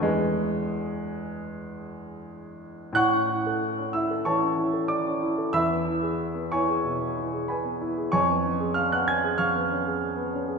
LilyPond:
\new Staff \with { instrumentName = "Grand piano" } { \time 4/4 \key a \major \tempo 4 = 93 << { gis2.~ gis8 r8 | <fis'' cis''' fis'''>4. <e'' e'''>8 <cis'' a'' cis'''>4 <d'' d'''>4 | <e'' b'' e'''>4. <cis'' gis'' cis'''>4. <b' gis'' b''>4 | <cis'' gis'' cis'''>4 <eis'' eis'''>16 <fis'' fis'''>16 <gis'' gis'''>8 <eis'' cis''' eis'''>2 | } \\ { <e, gis' b' gis''>1 | a,16 cis'16 e'16 a'8 cis'16 e'16 a'16 e16 cis'16 e'16 a'8 cis'16 e'16 a'16 | e,16 b16 e'16 gis'8 b16 e'16 gis'16 b,16 b16 e'16 gis'8 b16 e'16 gis'16 | eis,16 b16 cis'16 gis'8 b16 cis'16 gis'16 eis,16 b16 cis'16 gis'8 b16 cis'16 gis'16 | } >> }